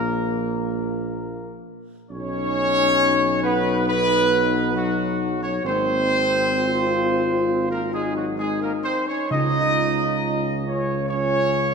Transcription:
Already playing: tuba A#1, french horn section A#3, trombone section A#3, trumpet section A#4
2.11 tuba B1, french horn section F#3 D#4, trombone section C#4, trumpet section C#5
3.43 trombone section B3, trumpet section B4
3.86 trombone section B3, trumpet section B4
4.74 trombone section F#3, trumpet section F#4
5.42 trombone section C#4, trumpet section C#5
5.64 tuba G#1, french horn section A#3 D#4, trombone section C4, trumpet section C5
6.55 french horn section F4
7.69 trombone section A#3, trumpet section A#4
7.92 trombone section G#3, french horn section D#4, trumpet section G#4
8.15 trombone section F#3, trumpet section F#4
8.38 trombone section G#3, french horn section D#4, trumpet section G#4
8.61 trombone section A#3, trumpet section A#4
8.83 trombone section C4, trumpet section C5
9.07 trombone section C#4, trumpet section C#5
9.30 tuba C#2, timpani C#3, french horn section C#4 F4, trombone section D#4, trumpet section D#5
10.66 trombone section C#4, trumpet section C#5
11.09 trombone section C#4, trumpet section C#5

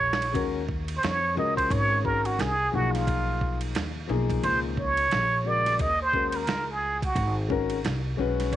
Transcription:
Already playing: upright bass A#1, muted trumpet C#5
0.13 snare
0.22 ride
0.32 upright bass D#2, grand piano G#3 C#4 F#4 A#4, kick, ride
0.69 kick
0.88 ride
0.97 muted trumpet C5
1.03 upright bass F2, muted trumpet C#5, snare, hi-hat pedal, ride
1.35 upright bass C#2, grand piano G#3 C#4 F#4 A#4, muted trumpet D#5
1.57 muted trumpet C5, kick, ride
1.70 upright bass G#1, muted trumpet C#5, kick, ride
2.03 grand piano G#3 C#4 F#4 A#4, muted trumpet A#4, kick
2.25 muted trumpet F#4, ride
2.39 upright bass C2, muted trumpet G#4, snare, hi-hat pedal, ride
2.72 upright bass B1, grand piano F3 A#3 D#4 G#4, muted trumpet F#4
2.94 muted trumpet F4, snare, ride
3.07 kick, ride
3.41 kick
3.61 ride
3.75 upright bass D#2, snare, hi-hat pedal, ride
4.08 upright bass B1, grand piano F3 A#3 D#4 G#4
4.30 kick, ride
4.42 upright bass C#2, grand piano F3 A#3 D#4, muted trumpet C5, ride
4.77 muted trumpet C#5, kick
4.97 ride
5.11 upright bass A#1, snare, hi-hat pedal, ride
5.44 grand piano C#3 G#3 F#4 A#4, muted trumpet D5
5.66 snare, ride
5.79 upright bass D#2, muted trumpet D#5, kick, ride
6.02 muted trumpet C5
6.12 grand piano G#3 C#4 F#4 A#4, kick
6.28 muted trumpet C5
6.32 muted trumpet A#4, ride
6.47 upright bass C#2, snare, hi-hat pedal, ride
6.71 muted trumpet G#4
7.02 muted trumpet F#4, kick, ride
7.15 upright bass G#1, kick, ride
7.49 grand piano G#3 C#4 F#4 A#4, kick
7.70 ride
7.85 upright bass C2, snare, hi-hat pedal, ride
8.17 upright bass B1, grand piano G#3 C#4 F#4 B4
8.40 snare, ride
8.53 kick, ride

